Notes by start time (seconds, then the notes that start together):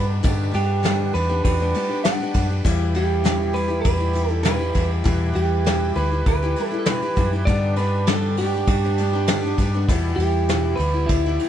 Already playing: G2 G3 B3 D4 G4
0.23 G2 D3 G3 B3 D4 G4, kick, ride
0.52 G2 G3 B3 D4 G4, ride
0.56 G4
0.83 G2 D3 G3 B3 D4 G4, snare, ride
1.13 E2 G3 B3 D4 G4 B4, ride
1.29 G3 B3 D4 G4
1.44 E2 B4, kick, ride
1.60 G3 B3 D4 G4
1.74 G3 B3 D4 G4, ride
1.89 G3 B3 D4 G4
2.04 G2 D3 G3 B3 D4 G4 F#5, snare, ride
2.20 G3 B3 D4 G4
2.34 F#2 G3 B3 D4 G4, kick, ride
2.50 G3 B3 D4 G4
2.64 E2 B2 E3 G3 B3 E4 G4, kick, crash
2.95 E3 G3 E4 G4, ride
3.24 E2 B2 E3 G3 E4 G4, snare, ride
3.53 E3 G3 E4 G4 B4, ride
3.68 E3 G3 E4 G4
3.81 E2 B4, kick, ride
3.97 E3 G3 E4 G4
4.13 E3 G3 E4 G4, ride
4.29 E3 G3 E4 G4 A4
4.43 E2 B2 E3 G3 E4 G4 B4, snare, ride
4.59 E3 G3 E4 G4
4.73 E2 E3 G3 E4 G4, kick, ride
5.04 E2 B2 E3 G3 E4 G4 B4, kick, ride
5.33 E2 E3 G3 E4 G4, ride
5.65 E2 B2 E3 G3 E4 G4, snare, ride
5.96 D2 E3 G3 E4 G4 B4, ride
6.12 E3 G3 E4 G4
6.26 D2 B4, kick, ride
6.43 E3 G3 E4 G4
6.56 E3 G3 E4, ride
6.60 G4
6.65 A4
6.71 E3 G3 E4 G4
6.79 A4
6.85 E2 B2 E3 G3 E4 G4 B4, snare, ride
7.02 E3 G3 E4 G4
7.16 F#2 E3 G3 E4 G4, kick, ride
7.33 E3 G3 E4 G4
7.45 G2 D3 G3 B3 D4 G4 D5, kick, ride
7.49 D4 G4
7.76 G3 B3 D4 G4 B4, ride
8.07 G2 D3 G3 B3 D4 G4 A4, snare, ride
8.37 G3 G4, ride
8.41 B3 D4 G4
8.54 G3 B3 D4 G4
8.67 G2, kick, ride
8.84 G3 B3 D4 G4
8.98 G3 B3 D4 G4, ride
9.13 G3 B3 D4 G4
9.27 G2 D3 G3 B3 D4 G4, snare, ride
9.44 G3 B3 D4 G4
9.58 G2 G3 B3 D4, kick, ride
9.62 G4
9.74 G3 B3 D4 G4
9.87 E2 B2 E3 G3 B3 E4 G4, kick, ride
9.92 E4
10.16 E2 E3 G4, ride
10.20 G3 B3 E4
10.49 E2 B2 E3 G3 B3 E4, snare, ride
10.76 D2 E3 G3 B4, ride
10.80 B3 E4
10.94 E3 G3 B3 E4
11.06 D2 E4, kick, ride
11.26 E3 G3 B3 E4
11.39 E3, ride
11.43 G3 B3 E4